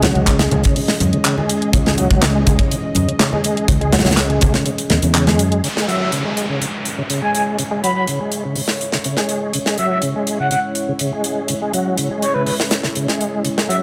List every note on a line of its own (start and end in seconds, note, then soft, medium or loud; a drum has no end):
0.00 0.12 C#2 loud
0.00 5.59 E3 medium
0.00 0.26 F#3 loud
0.00 5.60 G#3 medium
0.00 5.59 C#4 medium
0.00 5.60 G#4 medium
0.00 5.62 D#5 medium
0.00 snare loud
0.00 closed hi-hat medium
0.00 low conga medium
0.15 0.48 C#2 medium
0.15 closed hi-hat soft
0.15 high conga medium
0.27 0.39 C#3 medium
0.27 kick medium
0.27 clap loud
0.27 closed hi-hat medium
0.27 closed hi-hat soft
0.39 0.63 G#3 medium
0.39 snare loud
0.39 closed hi-hat medium
0.39 closed hi-hat soft
0.51 0.62 C#2 medium
0.51 closed hi-hat medium
0.51 high conga medium
0.51 low conga medium
0.64 0.75 C#3 medium
0.64 kick medium
0.64 closed hi-hat medium
0.64 closed hi-hat soft
0.76 0.81 C#3 medium
0.76 closed hi-hat soft
0.76 open hi-hat medium
0.88 snare soft
0.88 closed hi-hat soft
1.00 1.10 F#2 medium
1.00 closed hi-hat medium
1.00 high conga medium
1.00 low conga medium
1.13 1.17 C#3 medium
1.13 closed hi-hat soft
1.24 1.36 C#3 medium
1.24 clap loud
1.24 closed hi-hat medium
1.24 closed hi-hat soft
1.37 1.72 G#3 medium
1.37 high conga medium
1.49 closed hi-hat medium
1.62 closed hi-hat soft
1.73 2.07 C#2 loud
1.73 1.78 C#3 medium
1.73 kick loud
1.73 closed hi-hat medium
1.73 closed hi-hat soft
1.73 high conga medium
1.86 1.97 G#3 loud
1.86 snare medium
1.86 closed hi-hat soft
1.98 2.21 F#3 loud
1.98 closed hi-hat medium
1.98 low conga medium
2.10 2.43 C#2 medium
2.10 kick medium
2.10 closed hi-hat soft
2.10 high conga medium
2.22 2.34 C#3 medium
2.22 snare loud
2.22 clap loud
2.22 closed hi-hat medium
2.22 closed hi-hat soft
2.35 2.58 G#3 medium
2.46 2.57 C#2 loud
2.46 kick medium
2.46 closed hi-hat medium
2.46 high conga medium
2.46 low conga medium
2.59 2.70 C#3 medium
2.59 kick medium
2.59 closed hi-hat soft
2.71 2.76 C#3 medium
2.71 closed hi-hat medium
2.71 closed hi-hat soft
2.95 3.05 F#2 medium
2.95 closed hi-hat medium
2.95 high conga medium
2.95 low conga medium
3.08 3.12 C#3 medium
3.08 closed hi-hat soft
3.20 3.31 C#3 medium
3.20 snare loud
3.20 clap loud
3.20 closed hi-hat medium
3.20 closed hi-hat soft
3.32 3.67 G#3 medium
3.32 high conga medium
3.44 closed hi-hat medium
3.57 closed hi-hat soft
3.68 4.02 C#2 loud
3.68 3.73 C#3 medium
3.68 kick loud
3.68 closed hi-hat medium
3.68 closed hi-hat soft
3.68 high conga medium
3.81 3.92 G#3 loud
3.81 closed hi-hat soft
3.92 4.16 F#3 loud
3.92 snare medium
3.92 closed hi-hat medium
3.92 low conga medium
3.99 snare medium
3.99 closed hi-hat medium
4.05 4.38 C#2 loud
4.05 snare medium
4.05 closed hi-hat soft
4.05 closed hi-hat medium
4.05 high conga medium
4.11 snare medium
4.11 closed hi-hat medium
4.17 4.28 C#3 medium
4.17 snare loud
4.17 clap loud
4.17 closed hi-hat soft
4.17 closed hi-hat medium
4.30 4.53 G#3 medium
4.30 closed hi-hat soft
4.41 4.52 C#2 loud
4.41 kick medium
4.41 closed hi-hat medium
4.41 high conga medium
4.41 low conga medium
4.54 4.65 C#3 medium
4.54 snare soft
4.54 closed hi-hat soft
4.66 4.70 C#3 medium
4.66 closed hi-hat soft
4.66 closed hi-hat medium
4.78 closed hi-hat soft
4.78 closed hi-hat medium
4.90 5.00 E2 medium
4.90 snare soft
4.90 closed hi-hat medium
4.90 high conga medium
4.90 low conga medium
5.02 5.39 E2 loud
5.02 5.07 C#3 medium
5.02 closed hi-hat medium
5.02 closed hi-hat soft
5.14 5.26 C#3 medium
5.14 clap loud
5.14 closed hi-hat medium
5.14 closed hi-hat soft
5.27 5.62 G#3 medium
5.27 snare soft
5.27 closed hi-hat soft
5.27 high conga medium
5.39 5.59 F#2 medium
5.39 closed hi-hat medium
5.52 closed hi-hat soft
5.63 5.68 C#3 medium
5.63 13.83 G#3 medium
5.63 13.83 C#4 medium
5.63 13.83 E4 medium
5.63 13.40 C#5 medium
5.63 13.43 E5 medium
5.63 closed hi-hat medium
5.63 downlifter medium
5.76 5.87 G#3 loud
5.76 snare soft
5.88 6.11 F#3 medium
5.88 5.96 E5 medium
5.88 closed hi-hat medium
6.01 6.08 E5 medium
6.12 6.24 C#3 medium
6.12 closed hi-hat medium
6.25 6.48 G#3 medium
6.37 closed hi-hat medium
6.49 6.60 C#3 medium
6.61 6.66 C#3 medium
6.61 closed hi-hat medium
6.85 closed hi-hat medium
6.98 7.02 C#3 medium
7.10 7.21 C#3 medium
7.10 closed hi-hat medium
7.22 7.57 G#3 medium
7.22 7.30 G#5 medium
7.35 7.43 G#5 medium
7.35 closed hi-hat medium
7.59 7.63 C#3 medium
7.59 closed hi-hat medium
7.71 7.82 G#3 medium
7.83 8.06 F#3 medium
7.83 7.91 B5 medium
7.83 closed hi-hat medium
7.96 8.03 B5 medium
8.07 8.19 C#3 medium
8.07 closed hi-hat medium
8.21 8.43 G#3 medium
8.32 closed hi-hat medium
8.45 8.55 C#3 medium
8.55 8.61 C#3 medium
8.55 open hi-hat medium
8.68 snare soft
8.81 closed hi-hat medium
8.92 8.98 C#3 medium
8.92 snare soft
9.04 9.17 C#3 medium
9.04 closed hi-hat medium
9.17 9.53 G#3 medium
9.17 snare soft
9.29 closed hi-hat medium
9.53 9.59 C#3 medium
9.53 closed hi-hat medium
9.66 9.77 G#3 medium
9.66 snare soft
9.78 10.02 F#3 medium
9.78 9.86 E5 medium
9.78 closed hi-hat medium
9.90 9.98 E5 medium
10.02 10.14 C#3 medium
10.02 closed hi-hat medium
10.16 10.39 G#3 medium
10.27 closed hi-hat medium
10.40 10.50 C#3 medium
10.40 10.47 F#5 medium
10.51 10.56 C#3 medium
10.51 10.59 F#5 medium
10.51 closed hi-hat medium
10.75 closed hi-hat medium
10.88 10.93 C#3 medium
10.99 11.12 C#3 medium
10.99 closed hi-hat medium
11.13 11.48 G#3 medium
11.24 closed hi-hat medium
11.48 11.54 C#3 medium
11.48 closed hi-hat medium
11.62 11.72 G#3 loud
11.73 11.97 F#3 medium
11.73 closed hi-hat medium
11.97 12.09 C#3 medium
11.97 closed hi-hat medium
12.11 12.34 G#3 medium
12.22 12.32 C#5 medium
12.22 closed hi-hat medium
12.34 12.45 C#3 medium
12.34 12.42 B4 medium
12.46 12.51 C#3 medium
12.46 12.54 B4 medium
12.46 open hi-hat medium
12.60 snare soft
12.71 snare loud
12.71 closed hi-hat medium
12.83 12.88 C#3 medium
12.83 snare soft
12.95 13.07 C#3 medium
12.95 closed hi-hat medium
13.08 13.43 G#3 medium
13.08 snare soft
13.21 closed hi-hat medium
13.44 13.49 C#3 medium
13.44 13.83 B4 medium
13.44 13.83 G#5 medium
13.44 closed hi-hat medium
13.57 13.68 G#3 loud
13.57 snare medium
13.68 13.83 F#3 medium
13.68 13.76 E5 medium
13.68 closed hi-hat medium